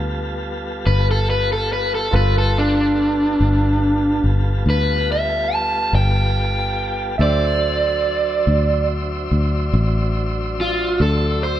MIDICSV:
0, 0, Header, 1, 5, 480
1, 0, Start_track
1, 0, Tempo, 845070
1, 1210, Time_signature, 12, 3, 24, 8
1, 6587, End_track
2, 0, Start_track
2, 0, Title_t, "Overdriven electric guitar"
2, 0, Program_c, 0, 29
2, 492, Note_on_c, 0, 71, 86
2, 608, Note_off_c, 0, 71, 0
2, 631, Note_on_c, 0, 69, 86
2, 737, Note_off_c, 0, 69, 0
2, 740, Note_on_c, 0, 71, 80
2, 852, Note_off_c, 0, 71, 0
2, 866, Note_on_c, 0, 69, 83
2, 975, Note_off_c, 0, 69, 0
2, 982, Note_on_c, 0, 71, 82
2, 1093, Note_off_c, 0, 71, 0
2, 1107, Note_on_c, 0, 69, 81
2, 1215, Note_off_c, 0, 69, 0
2, 1227, Note_on_c, 0, 71, 89
2, 1335, Note_off_c, 0, 71, 0
2, 1353, Note_on_c, 0, 69, 75
2, 1458, Note_off_c, 0, 69, 0
2, 1467, Note_on_c, 0, 62, 82
2, 2395, Note_off_c, 0, 62, 0
2, 2669, Note_on_c, 0, 71, 88
2, 2892, Note_off_c, 0, 71, 0
2, 2910, Note_on_c, 0, 76, 94
2, 3145, Note_off_c, 0, 76, 0
2, 3145, Note_on_c, 0, 81, 80
2, 3370, Note_off_c, 0, 81, 0
2, 3381, Note_on_c, 0, 79, 76
2, 4073, Note_off_c, 0, 79, 0
2, 4103, Note_on_c, 0, 74, 103
2, 5033, Note_off_c, 0, 74, 0
2, 6027, Note_on_c, 0, 65, 100
2, 6251, Note_off_c, 0, 65, 0
2, 6259, Note_on_c, 0, 69, 75
2, 6488, Note_off_c, 0, 69, 0
2, 6493, Note_on_c, 0, 72, 79
2, 6587, Note_off_c, 0, 72, 0
2, 6587, End_track
3, 0, Start_track
3, 0, Title_t, "Grand piano"
3, 0, Program_c, 1, 0
3, 0, Note_on_c, 1, 65, 43
3, 0, Note_on_c, 1, 69, 44
3, 0, Note_on_c, 1, 71, 48
3, 1181, Note_off_c, 1, 65, 0
3, 1186, Note_off_c, 1, 69, 0
3, 1189, Note_off_c, 1, 71, 0
3, 1199, Note_on_c, 1, 65, 48
3, 1207, Note_on_c, 1, 69, 43
3, 1212, Note_on_c, 1, 71, 51
3, 4060, Note_off_c, 1, 65, 0
3, 4064, Note_off_c, 1, 69, 0
3, 4067, Note_off_c, 1, 71, 0
3, 4078, Note_on_c, 1, 76, 51
3, 4087, Note_on_c, 1, 69, 46
3, 4095, Note_on_c, 1, 72, 53
3, 6587, Note_off_c, 1, 69, 0
3, 6587, Note_off_c, 1, 72, 0
3, 6587, Note_off_c, 1, 76, 0
3, 6587, End_track
4, 0, Start_track
4, 0, Title_t, "Tonewheel organ"
4, 0, Program_c, 2, 16
4, 0, Note_on_c, 2, 55, 60
4, 0, Note_on_c, 2, 59, 63
4, 0, Note_on_c, 2, 65, 62
4, 0, Note_on_c, 2, 69, 60
4, 1185, Note_off_c, 2, 65, 0
4, 1186, Note_off_c, 2, 69, 0
4, 1188, Note_off_c, 2, 59, 0
4, 1189, Note_off_c, 2, 55, 0
4, 1210, Note_on_c, 2, 59, 63
4, 1214, Note_on_c, 2, 55, 63
4, 1215, Note_on_c, 2, 69, 66
4, 1216, Note_on_c, 2, 65, 63
4, 4066, Note_off_c, 2, 59, 0
4, 4068, Note_off_c, 2, 55, 0
4, 4068, Note_off_c, 2, 69, 0
4, 4069, Note_off_c, 2, 65, 0
4, 4090, Note_on_c, 2, 72, 66
4, 4091, Note_on_c, 2, 62, 61
4, 4092, Note_on_c, 2, 54, 70
4, 4093, Note_on_c, 2, 76, 64
4, 6587, Note_off_c, 2, 54, 0
4, 6587, Note_off_c, 2, 62, 0
4, 6587, Note_off_c, 2, 72, 0
4, 6587, Note_off_c, 2, 76, 0
4, 6587, End_track
5, 0, Start_track
5, 0, Title_t, "Fingered electric bass"
5, 0, Program_c, 3, 33
5, 0, Note_on_c, 3, 38, 91
5, 466, Note_off_c, 3, 38, 0
5, 490, Note_on_c, 3, 31, 89
5, 1187, Note_off_c, 3, 31, 0
5, 1211, Note_on_c, 3, 31, 88
5, 1907, Note_off_c, 3, 31, 0
5, 1933, Note_on_c, 3, 31, 84
5, 2388, Note_off_c, 3, 31, 0
5, 2407, Note_on_c, 3, 31, 73
5, 2629, Note_off_c, 3, 31, 0
5, 2646, Note_on_c, 3, 38, 91
5, 3344, Note_off_c, 3, 38, 0
5, 3368, Note_on_c, 3, 31, 89
5, 4066, Note_off_c, 3, 31, 0
5, 4084, Note_on_c, 3, 38, 90
5, 4784, Note_off_c, 3, 38, 0
5, 4811, Note_on_c, 3, 38, 90
5, 5268, Note_off_c, 3, 38, 0
5, 5290, Note_on_c, 3, 38, 80
5, 5511, Note_off_c, 3, 38, 0
5, 5529, Note_on_c, 3, 33, 105
5, 6227, Note_off_c, 3, 33, 0
5, 6248, Note_on_c, 3, 38, 84
5, 6587, Note_off_c, 3, 38, 0
5, 6587, End_track
0, 0, End_of_file